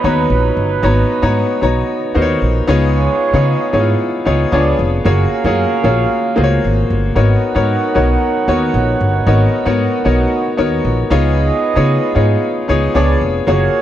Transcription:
Already playing: horn section F#3 D#4 B4, grand piano B3 D#4 F#4 C#5 A#5
0.04 upright bass D#2, grand piano B3 D#4 F#4 C#5 A#5
0.30 upright bass A#1
0.57 upright bass G1
0.83 upright bass G#1, grand piano B3 D#4 F#4 C#5 A#5
1.22 upright bass G#2, grand piano B3 D#4 F#4 C#5 A#5
1.61 upright bass B1, grand piano B3 D#4 F#4 C#5 A#5
2.14 upright bass D#2, grand piano B3 D#4 F#4 A#4 C5
2.22 grand piano C#5
2.42 upright bass A#1
2.67 upright bass C#2, horn section G#3 F4 C#5, grand piano B3 D#4 F4 G#4 C#5
3.33 upright bass C#3, grand piano B3 D#4 F4 G#4 C#5
3.73 upright bass G#2, grand piano B3 D#4 E4 G#4 C#5
3.80 grand piano F4
4.25 upright bass C#2, grand piano B3 D#4 F4 G#4 C#5
4.52 upright bass C#2, grand piano B3 D4 F4 G#4 C#5, horn section B3 G#4 D5
4.79 upright bass F1
5.05 upright bass F#1, grand piano A#3 F4 F#4 G#4 C#5, horn section C#4 A#4 F5
5.44 upright bass F#2, grand piano A#3 F4 F#4 G#4 C#5
5.84 upright bass A#1, grand piano A#3 F4 F#4 G#4 C#5
6.36 upright bass C#2, grand piano A#3 F4 F#4 G#4 C5
6.44 grand piano C#5
6.64 upright bass G#1
6.90 upright bass G1
7.15 upright bass G#1, grand piano B3 D#4 F#4 A#4 C#5, horn section D#4 C#5 F#5
7.55 upright bass G#2, grand piano B3 D#4 F#4 A#4 C#5
7.95 upright bass B1, grand piano B3 D#4 F#4 A#4 C#5
8.48 upright bass D#2, grand piano B3 D#4 F#4 A#4 C#5
8.74 upright bass A#1
9.01 upright bass G1
9.26 upright bass G#1, grand piano B3 D#4 F#4 A#4 C#5
9.65 upright bass G#2, grand piano B3 D#4 F#4 A#4 C#5
10.05 upright bass B1, grand piano B3 D#4 F#4 A#4 C#5
10.57 upright bass D#2, grand piano B3 D#4 F#4 A#4 C#5
10.85 upright bass A#1
11.10 upright bass C#2, grand piano B3 D#4 F4 G#4 C#5, horn section B3 G#4 D#5
11.75 upright bass C#3, grand piano B3 D#4 F4 G#4 C#5
12.15 upright bass G#2, grand piano B3 D#4 F4 G#4 C#5
12.68 upright bass C#2, grand piano B3 D#4 F4 G#4 C#5
12.94 upright bass C#2, grand piano B3 D4 F4 G#4 C#5, horn section B3 G#4 D5
13.21 upright bass F1
13.47 upright bass F#1, grand piano A#3 F4 F#4 G#4 C#5, horn section A#3 G#4 C#5

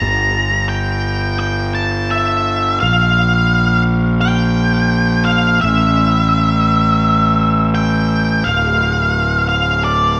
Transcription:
0.00 fingered electric bass G1, lead electric guitar A#5
0.69 lead electric guitar G5
1.40 lead electric guitar G5
1.75 lead electric guitar A5
2.11 lead electric guitar E5
2.80 fingered electric bass A#1, lead electric guitar F5
4.21 lead electric guitar G5
5.25 lead electric guitar F5
5.61 fingered electric bass A1, lead electric guitar E5
7.75 lead electric guitar G5
8.44 fingered electric bass D1, lead electric guitar F5
9.49 lead electric guitar F5
9.84 lead electric guitar D5

